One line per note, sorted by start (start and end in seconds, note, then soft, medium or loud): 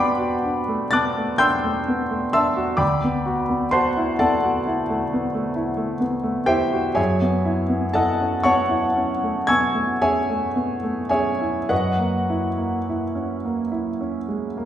0.00 2.78 G2 soft
0.00 0.93 B3 soft
0.00 0.43 D4 soft
0.00 0.19 F#4 soft
0.00 2.84 B4 medium
0.00 2.84 C5 medium
0.00 0.89 D5 medium
0.00 2.33 E5 medium
0.00 2.84 F#5 medium
0.00 1.38 G5 medium
0.00 0.93 A5 medium
0.00 2.78 B5 medium
0.00 1.39 C6 medium
0.00 0.92 D6 medium
0.19 0.59 F#4 soft
0.43 0.83 D4 soft
0.68 1.08 A3 soft
0.91 1.32 B3 soft
0.91 1.38 A5 medium
0.91 1.38 D6 medium
0.91 1.38 F#6 medium
0.91 1.40 A6 medium
1.17 1.56 A3 soft
1.38 1.79 D4 soft
1.38 2.30 G5 medium
1.38 2.30 C6 medium
1.38 2.31 E6 medium
1.38 2.34 G6 medium
1.64 2.02 A3 soft
1.88 2.26 B3 soft
2.11 2.49 A3 soft
2.33 2.72 D4 soft
2.33 2.77 E5 medium
2.33 2.78 A5 medium
2.33 2.77 C6 medium
2.33 2.81 E6 medium
2.56 2.81 F#4 soft
2.77 6.92 D2 medium
2.77 3.69 D5 medium
2.77 3.69 G5 medium
2.77 3.69 B5 medium
2.77 3.72 D6 medium
3.04 3.42 B3 soft
3.26 3.64 F#4 soft
3.50 3.88 B3 soft
3.71 4.12 F#4 soft
3.71 4.17 C5 medium
3.71 4.17 F#5 medium
3.71 4.17 A5 medium
3.71 4.19 C6 medium
3.97 4.35 E4 soft
4.19 4.58 B3 soft
4.19 5.98 A4 medium
4.19 5.98 D5 medium
4.19 5.98 F#5 medium
4.19 6.02 A5 medium
4.44 4.81 F#4 soft
4.67 5.04 E4 soft
4.90 5.26 A3 soft
5.13 5.49 B3 soft
5.34 5.71 A3 soft
5.56 5.93 E4 soft
5.77 6.15 A3 soft
6.00 6.39 B3 soft
6.23 6.63 A3 soft
6.46 6.87 E4 soft
6.46 6.93 G4 medium
6.46 6.93 C5 medium
6.46 6.93 E5 medium
6.46 6.96 G5 medium
6.73 6.98 F#4 soft
6.95 11.66 F#2 medium
6.95 7.91 G#4 medium
6.95 7.90 C#5 medium
6.95 7.91 E5 medium
6.95 7.94 G#5 medium
7.21 7.61 B3 soft
7.45 7.85 E4 soft
7.69 8.10 B3 soft
7.93 8.36 E4 soft
7.93 8.42 A4 medium
7.93 8.42 D#5 medium
7.93 8.42 F#5 medium
7.93 8.43 A5 medium
8.21 8.61 C#4 soft
8.44 8.86 B3 soft
8.44 9.44 C#5 medium
8.44 9.44 F#5 medium
8.44 9.44 A5 medium
8.44 9.47 C#6 medium
8.69 9.11 E4 soft
8.96 9.38 C#4 soft
9.23 9.65 A3 soft
9.47 9.92 B3 soft
9.47 9.98 G#5 medium
9.47 9.98 C#6 medium
9.47 9.98 E6 medium
9.47 10.01 G#6 medium
9.75 10.18 A3 soft
10.02 10.46 C#4 soft
10.02 11.08 G#4 medium
10.02 11.08 C#5 medium
10.02 11.09 E5 medium
10.02 11.08 G#5 medium
10.30 10.74 A3 soft
10.56 11.01 B3 soft
10.83 11.29 A3 soft
11.09 11.58 C#4 soft
11.09 11.66 G#4 medium
11.09 11.66 C#5 medium
11.09 11.66 E5 medium
11.09 11.69 G#5 medium
11.41 11.70 E4 soft
11.69 14.65 F#2 soft
11.69 14.65 F#4 medium
11.69 14.65 B4 medium
11.69 14.65 D#5 medium
11.69 14.65 F#5 medium
11.98 12.46 A#3 soft
12.30 12.76 E4 soft
12.57 13.04 A#3 soft
12.90 13.34 E4 soft
13.15 13.61 C#4 soft
13.45 13.90 A#3 soft
13.72 14.17 E4 soft
14.01 14.45 C#4 soft
14.28 14.65 G#3 soft
14.57 14.65 A#3 soft